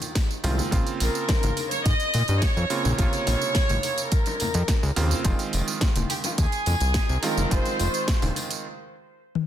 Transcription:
Already playing: D#3 G#3 C4 F4
0.02 closed hi-hat, tambourine
0.15 kick, snare, closed hi-hat, tambourine
0.31 tambourine
0.43 C2 D#3 G#3 C4 F4, open hi-hat, tambourine, low conga
0.58 tambourine, high conga
0.71 A#1 C#3 A#3 C4 F4, kick, closed hi-hat, tambourine, high bongo
0.87 closed hi-hat, tambourine
1.00 A#1 A#4, open hi-hat, tambourine
1.15 A#4, tambourine
1.29 kick, snare, closed hi-hat, tambourine, high bongo
1.43 G#1, closed hi-hat, tambourine, high conga
1.57 open hi-hat, tambourine
1.71 C#5, closed hi-hat, tambourine, high bongo
1.85 G#2 D#5, kick, closed hi-hat, tambourine
2.00 closed hi-hat, tambourine
2.14 A#2, open hi-hat, tambourine, high conga
2.28 G2, closed hi-hat, tambourine, high bongo
2.41 C#5, kick, snare, closed hi-hat, tambourine
2.56 F2, tambourine
2.70 C#3 A#3 C4 F4, open hi-hat, tambourine, high bongo
2.85 A#1, tambourine, high conga
2.98 A#1 C3 C#3 A#3 F4 C#5, kick, closed hi-hat, tambourine
3.13 closed hi-hat, tambourine
3.27 A#1, open hi-hat, tambourine, high bongo
3.42 tambourine
3.55 kick, snare, closed hi-hat, tambourine
3.69 G#1, open hi-hat, tambourine, high bongo, high conga
3.83 open hi-hat, tambourine
3.98 closed hi-hat, tambourine
4.11 A#4, kick, closed hi-hat, tambourine
4.26 closed hi-hat, tambourine, high bongo
4.40 open hi-hat, tambourine, high conga, low conga
4.54 F2, closed hi-hat, tambourine
4.68 kick, snare, closed hi-hat, tambourine, high bongo
4.83 C#2, tambourine
4.96 D#2 C#3 A#3 C4 F4, open hi-hat, tambourine, low conga
5.11 tambourine, high conga
5.24 F1 D#3 G#3 C4 F4, kick, closed hi-hat, tambourine, high bongo
5.39 closed hi-hat, tambourine
5.53 F1, open hi-hat, tambourine
5.68 tambourine, high bongo
5.81 kick, snare, closed hi-hat, tambourine
5.95 D#1, closed hi-hat, tambourine, high conga
6.10 G4, open hi-hat, tambourine
6.24 F4, closed hi-hat, tambourine, high bongo
6.38 D#2 G#4, kick, closed hi-hat, tambourine
6.52 closed hi-hat, tambourine
6.66 F2, open hi-hat, tambourine, high bongo, high conga
6.80 C2, closed hi-hat, tambourine
6.94 kick, snare, closed hi-hat, tambourine
7.09 C2, tambourine
7.23 D#3 G#3 C4 F4 A#4, open hi-hat, tambourine, high bongo
7.37 F1, tambourine, high conga
7.50 F1 D#3 G#3 C4 F4 C5, kick, closed hi-hat, tambourine
7.66 closed hi-hat, tambourine, high bongo
7.80 F1, open hi-hat, tambourine
7.94 closed hi-hat, tambourine
8.08 kick, snare, closed hi-hat, tambourine
8.22 D#1, open hi-hat, tambourine, high bongo, high conga
8.36 open hi-hat, tambourine
8.51 closed hi-hat, tambourine
9.35 high tom

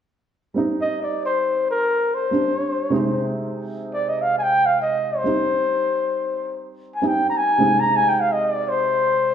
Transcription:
0.54 G3 C4 D#4
0.81 D#5
1.03 D5
1.26 C5
1.71 A#4
2.14 C5
2.31 G3 C4 D4
2.58 C#5
2.69 C5
2.82 C#5
2.90 C3 G#3 C4 D#4
2.94 C5
3.94 D5
4.09 D#5
4.22 F5
4.39 G#5
4.43 G5
4.66 F5
4.82 D#5
5.17 C5
5.24 G3 C4 D#4
6.95 G#5
7.02 G3 C4 D#4
7.07 G5
7.30 A#5
7.37 G#5
7.58 C3 G#3 C4 D#4
7.80 A#5
7.96 G#5
8.09 G5
8.21 F5
8.33 D#5
8.45 D5
8.69 C5

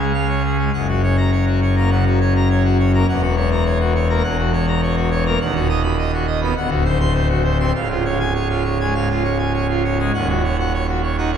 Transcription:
Already playing: C#2 C#3
0.00 G#3 G#4
0.14 F5
0.29 C#5
0.44 G#4
0.59 G#3
0.74 F#1 F#2 F#5
0.89 F#4
1.03 C#5
1.17 A#5
1.32 C#5
1.47 F#4
1.62 C#5
1.76 A#3 A#5
1.91 C#3 F#5
2.07 F#4
2.21 C#5
2.36 A#5
2.50 C#5
2.65 F#4
2.79 C#5
2.94 A#3 A#5
3.08 E1 E2 F#5
3.22 F#4
3.36 C#5
3.51 A#5
3.65 C#5
3.80 F#4
3.95 C#5
4.09 A#3 A#5
4.24 E1 E2 F#5
4.38 F#4
4.53 C#5
4.68 A#5
4.82 C#5
4.96 F#4
5.11 C#5
5.26 A#3 A#5
5.41 D#1 D#2 F#5
5.55 F#4
5.69 D#5
5.84 B5
5.98 D#5
6.13 F#4
6.27 D#5
6.41 B3 B5
6.57 D1 D2 F#5
6.70 F#4
6.85 C5
7.00 C6
7.14 C5
7.29 F#4
7.44 C5
7.60 C4 C6
7.75 C#1 C#2 F5
7.90 F4
8.05 C#5
8.20 G#5
8.35 C#5
8.50 F4
8.65 C#5
8.80 G#3 G#5
8.94 G#2 F5
9.10 F4
9.24 C#5
9.39 G#5
9.53 C#5
9.69 F4
9.84 C#5
9.99 G#3 G#5
10.14 D#1 D#2 F#5
10.29 F#4
10.44 C#5
10.59 F#5
10.73 C#5
10.89 F#4
11.03 C#5
11.18 D#4 F#5
11.33 A#2 C#5

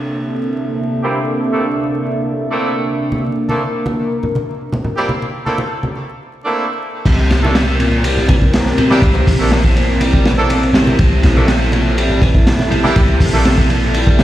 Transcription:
Already playing: C3 A#3 D4 A4 E5
1.04 G3 A#3 C4 D4 E4 G4
1.53 A3 A#3 C4 D4 E4 A4
2.51 A3 A#3 C4 D4 E4 A4
3.12 A#4, high conga
3.49 A3 A#3 C4 D4 E4 A4, muted conga, high conga
3.86 muted conga, high conga
4.23 low conga
4.35 muted conga, high conga
4.73 muted conga, high conga
4.85 low conga
4.97 G3 A#3 C4 D4 E4 G4
5.09 high conga
5.22 muted conga
5.46 A3 A#3 C4 D4 E4 A4, high conga
5.58 muted conga
5.83 high conga
6.45 A3 A#3 C4 D4 E4 A4
7.06 C2 C3 C4 E4 A#4, kick, crash, ride, muted conga
7.30 snare, ride, high conga
7.42 A3 A#3 D4 E4 A4, muted conga, high conga
7.55 C3, snare, ride
7.68 C3
7.80 A#2, ride
7.92 muted conga
8.04 G3, ride
8.17 low conga
8.28 E3, kick, ride, muted conga, high conga
8.42 kick
8.53 snare, ride
8.66 snare
8.78 C3, ride, muted conga, low conga
8.91 G3 A#3 D4 E4 G4, snare, high conga
9.02 C2 C3, kick, ride
9.15 muted conga
9.27 A#1, kick, open hi-hat, high conga
9.39 A3 A#3 D4 E4 A4, ride, high conga
9.52 C3, snare, ride
9.64 C3, kick, muted conga
9.76 A#2, ride
10.01 G3, ride, muted conga
10.13 kick, low conga
10.25 E3, snare, ride, high conga
10.38 A3 A#3 D4 E4 A4
10.50 ride, muted conga
10.63 ride
10.73 C3, snare, ride, low conga
10.87 muted conga, high conga
10.99 C2 C3 A4, kick, ride
11.23 A#1, snare, ride, high conga
11.36 A3 A#3 D4 E4 A4, muted conga, high conga
11.48 C3, snare, ride
11.61 C3
11.72 A#2, ride, muted conga
11.97 G3, ride
12.10 low conga
12.22 E3, kick, ride, muted conga, high conga
12.35 kick
12.47 snare, ride
12.59 snare, muted conga
12.71 C3, ride, low conga
12.84 G3 A#3 D4 E4 G4, snare, high conga
12.96 C2 C3, kick, ride
13.08 muted conga
13.20 A#1, kick, open hi-hat, high conga
13.33 A3 A#3 D4 E4 A4, ride, high conga
13.45 C3, snare, ride, muted conga
13.58 C3, kick
13.70 A#2, ride
13.94 G3, ride, muted conga
14.07 kick, low conga
14.19 E3, snare, ride, high conga

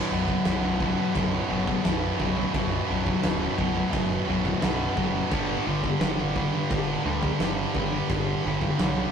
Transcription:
Already playing: B1 B2
0.11 B0 B1 F#2 B2
0.28 B1 F#2, kick
0.45 B0 B1 F#2 B2, snare, crash
0.64 B1 F#2
0.80 B1 F#2 B2, kick
0.98 B1 F#2
1.15 B0 B1 F#2 B2, kick, crash
1.49 F#1 B1 F#2 B2
1.67 B1 F#2, kick
1.83 B0 B1 F#2 B2, snare, crash
2.20 B0 B1 F#2 B2, kick
2.36 B1 F#2
2.54 B0 B1 F#2 B2, kick, crash
2.89 B0 B1 F#2 B2
3.06 B1 F#2, kick
3.23 D1 B1 F#2 B2, snare, crash
3.40 B1 F#2
3.58 B0 B1 F#2 B2, kick
3.75 B1 F#2
3.91 F#1 B1 F#2 B2, kick, crash
4.28 B0 B1 F#2 B2
4.45 B1 F#2, kick
4.61 B1 F#2 B2, snare, crash
4.95 F#1 B1 F#2 B2, kick
5.12 B1 F#2
5.30 G1 G2 D3 G3, kick, crash
5.66 G1 G2 D3 G3
5.83 G2 D3, kick
6.00 G1 G2 D3 G3, snare, crash
6.18 G2 D3
6.36 G2 D3 G3, kick
6.54 G2 D3
6.70 G1 G2 D3 G3, kick, crash
7.05 D2 G2 D3 G3
7.23 G2 D3, kick
7.40 G1 G2 D3 G3, snare, crash
7.75 G1 G2 D3 G3, kick
7.93 G2 D3
8.10 G1 G2 D3 G3, kick, crash
8.45 G1 G2 D3 G3
8.62 G2 D3, kick
8.79 B1 G2 D3 G3, snare, crash
8.98 G2 D3

